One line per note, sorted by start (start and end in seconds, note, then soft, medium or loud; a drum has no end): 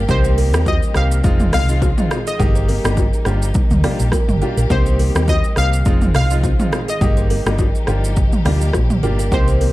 0.00 1.21 G3 medium
0.00 1.21 A#3 medium
0.00 1.21 G4 medium
0.08 0.54 C2 loud
0.08 3.23 D#3 medium
0.08 0.49 A#3 loud
0.08 0.50 C4 medium
0.08 2.37 C4 medium
0.08 0.50 D#4 medium
0.08 0.50 G4 loud
0.08 0.69 C5 loud
0.08 kick loud
0.08 low conga medium
0.08 shaker medium
0.25 0.32 C5 medium
0.25 shaker medium
0.38 0.47 A#4 medium
0.38 open hi-hat soft
0.38 low bongo medium
0.38 shaker soft
0.53 0.78 D#2 medium
0.53 0.73 A#3 medium
0.53 0.73 C4 medium
0.53 0.74 D#4 medium
0.53 0.74 G4 medium
0.53 cross-stick loud
0.53 high bongo medium
0.53 low bongo medium
0.53 shaker medium
0.66 0.97 D#5 loud
0.66 kick medium
0.66 high bongo medium
0.66 shaker medium
0.83 shaker medium
0.94 1.20 C2 medium
0.94 1.17 A#3 medium
0.94 1.17 C4 medium
0.94 1.17 D#4 medium
0.94 1.17 G4 medium
0.94 1.05 C5 medium
0.94 1.50 F5 loud
0.94 cross-stick medium
0.94 shaker medium
1.12 shaker medium
1.23 1.49 F1 loud
1.23 2.38 F3 medium
1.23 1.65 G#3 medium
1.23 2.38 G#3 medium
1.23 1.65 C4 medium
1.23 1.65 D#4 medium
1.23 1.65 F4 loud
1.23 2.38 F4 medium
1.23 kick loud
1.23 low conga medium
1.23 shaker medium
1.40 mid tom loud
1.40 shaker medium
1.53 1.91 C2 medium
1.53 1.62 D#5 medium
1.53 2.29 F5 loud
1.53 cross-stick loud
1.53 open hi-hat medium
1.53 low bongo medium
1.53 low conga medium
1.53 shaker medium
1.68 1.89 G#3 medium
1.68 1.89 C4 medium
1.68 1.89 D#4 medium
1.68 1.89 F4 medium
1.68 shaker medium
1.82 1.91 C5 medium
1.82 kick medium
1.82 high bongo medium
1.82 shaker medium
1.97 2.17 G#3 medium
1.97 2.18 C4 medium
1.97 2.18 D#4 medium
1.97 2.18 F4 medium
1.97 mid tom medium
1.97 shaker medium
2.11 2.20 G#4 medium
2.11 cross-stick loud
2.11 high bongo medium
2.11 shaker soft
2.27 2.34 G#4 medium
2.27 3.38 D#5 medium
2.27 shaker medium
2.39 2.78 G1 loud
2.39 4.68 G3 medium
2.39 2.80 A#3 loud
2.39 5.82 A#3 medium
2.39 2.80 D#4 medium
2.39 4.68 D#4 medium
2.39 2.80 G4 loud
2.39 3.25 G4 medium
2.39 kick loud
2.39 low conga medium
2.39 shaker medium
2.55 2.63 C5 medium
2.55 shaker medium
2.69 2.78 A#4 medium
2.69 open hi-hat soft
2.69 low bongo medium
2.69 shaker soft
2.84 3.09 G1 medium
2.84 3.04 A#3 medium
2.84 3.04 D4 medium
2.84 3.04 D#4 medium
2.84 3.04 G4 medium
2.84 cross-stick loud
2.84 high bongo medium
2.84 low bongo medium
2.84 shaker medium
2.97 kick medium
2.97 high bongo medium
2.97 shaker medium
3.13 shaker soft
3.25 3.51 G1 loud
3.25 4.69 F3 medium
3.25 3.48 A#3 medium
3.25 3.48 D4 medium
3.25 3.48 F4 medium
3.25 5.83 G4 medium
3.25 3.48 G4 medium
3.25 3.35 C5 medium
3.25 cross-stick medium
3.25 shaker medium
3.42 shaker medium
3.54 kick loud
3.54 low conga medium
3.54 shaker medium
3.71 3.82 D2 medium
3.71 mid tom medium
3.71 shaker medium
3.83 4.05 A#3 medium
3.83 4.05 D4 medium
3.83 4.05 F4 medium
3.83 4.06 G4 medium
3.83 3.93 D5 medium
3.83 cross-stick medium
3.83 open hi-hat medium
3.83 low bongo medium
3.83 low conga medium
3.83 shaker medium
4.00 4.11 A#1 medium
4.00 shaker medium
4.12 4.22 A#4 medium
4.12 kick medium
4.12 cross-stick medium
4.12 high bongo medium
4.12 shaker medium
4.28 4.40 G1 medium
4.28 mid tom medium
4.28 shaker medium
4.41 4.63 A#3 medium
4.41 4.63 D4 medium
4.41 4.63 F4 medium
4.41 4.51 G4 medium
4.41 4.63 G4 medium
4.41 high bongo medium
4.41 shaker soft
4.57 4.68 A#1 medium
4.57 4.65 A#4 medium
4.57 shaker medium
4.70 5.08 C2 loud
4.70 5.84 D#3 medium
4.70 5.85 G3 medium
4.70 5.11 A#3 loud
4.70 5.84 C4 medium
4.70 5.11 C4 medium
4.70 5.11 D#4 medium
4.70 5.11 G4 loud
4.70 5.30 C5 loud
4.70 kick loud
4.70 low conga medium
4.70 shaker medium
4.86 4.94 C5 medium
4.86 shaker medium
4.99 5.09 A#4 medium
4.99 open hi-hat soft
4.99 low bongo medium
4.99 shaker soft
5.15 5.39 D#2 medium
5.15 5.35 A#3 medium
5.15 5.35 C4 medium
5.15 5.35 D#4 medium
5.15 5.35 G4 medium
5.15 cross-stick loud
5.15 high bongo medium
5.15 low bongo medium
5.15 shaker medium
5.28 5.58 D#5 loud
5.28 kick medium
5.28 high bongo medium
5.28 shaker medium
5.44 shaker medium
5.56 5.81 C2 medium
5.56 5.78 A#3 medium
5.56 5.79 C4 medium
5.56 5.79 D#4 medium
5.56 5.79 G4 medium
5.56 5.66 C5 medium
5.56 6.15 F5 loud
5.56 cross-stick medium
5.56 shaker medium
5.73 shaker medium
5.85 6.10 F1 loud
5.85 7.86 D#3 medium
5.85 7.00 F3 medium
5.85 6.27 G#3 medium
5.85 7.00 G#3 medium
5.85 7.00 C4 medium
5.85 6.27 C4 medium
5.85 6.27 D#4 medium
5.85 7.00 F4 medium
5.85 6.27 F4 loud
5.85 kick loud
5.85 low conga medium
5.85 shaker medium
6.01 mid tom medium
6.01 shaker medium
6.14 6.53 C2 loud
6.14 6.24 D#5 medium
6.14 6.85 F5 loud
6.14 cross-stick medium
6.14 open hi-hat medium
6.14 low bongo medium
6.14 low conga medium
6.14 shaker medium
6.30 6.51 G#3 medium
6.30 6.51 C4 medium
6.30 6.51 D#4 medium
6.30 6.51 F4 medium
6.30 shaker medium
6.43 6.53 C5 medium
6.43 kick medium
6.43 high bongo medium
6.43 shaker medium
6.59 6.79 G#3 medium
6.59 6.79 C4 medium
6.59 6.79 D#4 medium
6.59 6.80 F4 medium
6.59 mid tom medium
6.59 shaker medium
6.72 6.82 G#4 medium
6.72 cross-stick loud
6.72 high bongo medium
6.72 shaker soft
6.88 6.96 G#4 medium
6.88 8.00 D#5 medium
6.88 shaker medium
7.01 7.39 G1 loud
7.01 9.30 G3 medium
7.01 9.73 A#3 medium
7.01 7.42 A#3 loud
7.01 9.30 D#4 medium
7.01 7.42 D#4 medium
7.01 9.73 G4 medium
7.01 7.42 G4 loud
7.01 kick loud
7.01 low conga medium
7.01 shaker medium
7.17 7.25 C5 medium
7.17 shaker medium
7.30 7.39 A#4 medium
7.30 open hi-hat soft
7.30 low bongo medium
7.30 shaker soft
7.46 7.70 G1 medium
7.46 7.66 A#3 medium
7.46 7.66 D4 medium
7.46 7.66 D#4 medium
7.46 7.66 G4 medium
7.46 cross-stick loud
7.46 high bongo soft
7.46 low bongo medium
7.46 shaker medium
7.59 kick medium
7.59 high bongo medium
7.59 shaker medium
7.75 shaker soft
7.87 8.26 G1 medium
7.87 9.31 F3 medium
7.87 8.09 A#3 medium
7.87 8.09 D4 medium
7.87 8.09 F4 medium
7.87 8.10 G4 medium
7.87 7.97 C5 medium
7.87 cross-stick medium
7.87 shaker medium
8.04 shaker medium
8.16 kick loud
8.16 low conga medium
8.16 shaker medium
8.33 mid tom medium
8.33 shaker medium
8.45 8.70 D2 loud
8.45 8.67 A#3 medium
8.45 8.67 D4 medium
8.45 8.67 F4 medium
8.45 8.67 G4 medium
8.45 8.55 D5 medium
8.45 cross-stick medium
8.45 open hi-hat medium
8.45 low bongo medium
8.45 low conga medium
8.45 shaker medium
8.61 shaker medium
8.73 8.99 A#1 loud
8.73 8.83 C5 medium
8.73 kick medium
8.73 cross-stick medium
8.73 high bongo medium
8.73 shaker medium
8.90 mid tom medium
8.90 shaker medium
9.03 9.28 G1 medium
9.03 9.25 A#3 medium
9.03 9.25 D4 medium
9.03 9.25 F4 medium
9.03 9.25 G4 medium
9.03 9.12 A#4 medium
9.03 high bongo medium
9.03 shaker soft
9.19 9.27 A#4 medium
9.19 shaker medium
9.31 9.70 C2 loud
9.31 9.73 D#3 medium
9.31 9.73 G3 medium
9.31 9.73 A#3 loud
9.31 9.73 C4 medium
9.31 9.73 D#4 medium
9.31 9.73 G4 loud
9.31 9.73 C5 loud
9.31 kick loud
9.31 low conga medium
9.31 shaker medium
9.48 9.55 C5 medium
9.48 shaker medium
9.61 9.70 A#4 medium
9.61 open hi-hat soft
9.61 low bongo medium
9.61 shaker soft